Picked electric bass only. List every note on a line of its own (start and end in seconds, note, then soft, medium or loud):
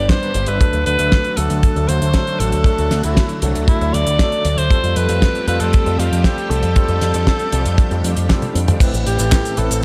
0.35 0.46 G1 medium
0.48 0.59 G1 medium
0.73 0.85 D2 medium
0.86 0.98 D2 medium
0.99 1.10 D2 medium
1.37 1.49 D2 medium
1.50 1.62 D2 medium
1.76 1.87 D2 medium
1.89 2.00 D2 medium
2.02 2.13 D2 medium
2.40 2.51 A1 medium
2.53 2.64 D2 medium
2.78 2.90 D2 medium
2.91 3.03 D2 medium
3.04 3.16 D2 medium
3.42 3.54 C2 medium
3.55 3.67 D2 medium
3.81 3.92 D2 medium
3.94 4.05 D2 medium
4.07 4.18 D2 medium
4.45 4.56 D2 medium
4.58 4.69 D2 medium
4.83 4.95 F2 medium
4.96 5.08 F2 medium
5.09 5.21 F2 medium
5.48 5.59 F2 medium
5.60 5.72 F2 medium
5.86 5.98 F2 medium
5.99 6.10 F2 medium
6.12 6.23 F2 medium
6.50 6.62 C2 medium
6.63 6.74 F2 medium
6.89 7.00 F2 medium
7.01 7.13 F2 medium
7.14 7.26 F2 medium
7.53 7.64 C2 loud
7.65 7.77 F2 medium
7.91 8.03 F2 medium
8.04 8.15 F2 medium
8.17 8.28 F2 medium
8.55 8.67 F2 medium
8.68 8.80 F2 medium
8.94 9.05 A1 medium
9.06 9.18 A1 medium
9.19 9.31 A1 medium
9.58 9.69 A1 medium
9.71 9.82 A1 medium